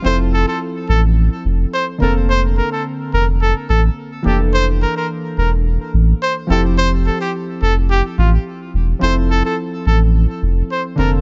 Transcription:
<<
  \new Staff \with { instrumentName = "Trumpet" } { \time 4/4 \key f \major \tempo 4 = 107 c''16 r16 a'16 a'16 r8 a'16 r4 r16 c''16 r16 bes'16 r16 | c''16 r16 bes'16 a'16 r8 bes'16 r16 a'16 r16 a'16 r8. g'16 r16 | c''16 r16 bes'16 bes'16 r8 bes'16 r4 r16 c''16 r16 a'16 r16 | c''16 r16 a'16 g'16 r8 a'16 r16 g'16 r16 f'16 r4 r16 |
c''16 r16 a'16 a'16 r8 a'16 r4 r16 c''16 r16 bes'16 r16 | }
  \new Staff \with { instrumentName = "Synth keys" } { \time 4/4 \key f \major <f c' e' a'>2.~ <f c' e' a'>8 <d bes c' a'>8~ | <d bes c' a'>2.~ <d bes c' a'>8 <e bes d' a'>8~ | <e bes d' a'>2.~ <e bes d' a'>8 <f c' e' g'>8~ | <f c' e' g'>2.~ <f c' e' g'>8 r8 |
<f c' e' a'>2.~ <f c' e' a'>8 <d bes c' a'>8 | }
  \new Staff \with { instrumentName = "Sub bass" } { \clef bass \time 4/4 \key f \major f,,4 r8 a,,4 f,,8 r8 f,,8~ | f,,4 r8 f,,4 a,,8 r8 f,,8~ | f,,4 r8 e,,4 a,,8 r8 f,,8~ | f,,4 r8 f,,4 a,,8 r8 e,,8 |
f,,4 r8 a,,4 f,,8 r8 f,,8 | }
>>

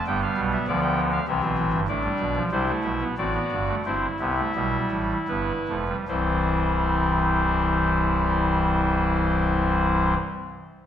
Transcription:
<<
  \new Staff \with { instrumentName = "Pipe organ" } { \time 3/4 \key c \major \tempo 4 = 82 << { g''16 f''8 e''16 d''16 g''8 f''16 e''4 | d''4 c''8 e''8 d''4 | c''8 e''4. b'4 | <e c' c''>2.~ |
<e c' c''>2. | } \\ { b2 c'4 | d'4 e'4 fis'4 | e'2. | e'2.~ |
e'2. | } >> }
  \new Staff \with { instrumentName = "Pipe organ" } { \clef bass \time 3/4 \key c \major << { g4 f4 e4 | a16 g8 f16 g16 a8 b16 c'16 b8 a16 | c'8 b16 a16 g4 b8 a16 g16 | g2.~ |
g2. | } \\ { <g,, g,>8 <b,, b,>8 <d, d>4 <c, c>16 <b,, b,>16 <a,, a,>16 <g,, g,>16 | <a,, a,>8 <b,, b,>8 <c, c>8 <b,, b,>8 <a,, a,>8 <g,, g,>8 | <g,, g,>8 <c, c>8 <b,, b,>8 <a,, a,>8 <g,, g,>8 <f,, f,>8 | <c,, c,>2.~ |
<c,, c,>2. | } >> }
>>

